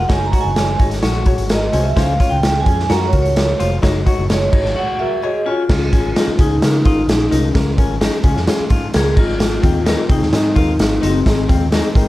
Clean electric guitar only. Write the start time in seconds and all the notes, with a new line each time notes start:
0.09 D#4
0.32 F#4
0.79 D#4
1.03 F#4
1.73 C#4
1.96 C#4
2.20 F4
2.66 C#4
2.90 F#4
3.60 F4
3.83 D#4
4.06 F#4
4.52 D#4
4.76 F#4
5.46 C#4
5.93 C#4
6.16 D#4
6.39 C#4
6.86 F4
7.31 D#4
7.78 C#4
8.01 D#4
8.24 C#4
8.71 F4
9.16 D#4
9.63 C4
9.86 D#4
10.09 C4
10.56 F4
11.02 D#4
11.49 C4
11.72 D#4
11.96 C4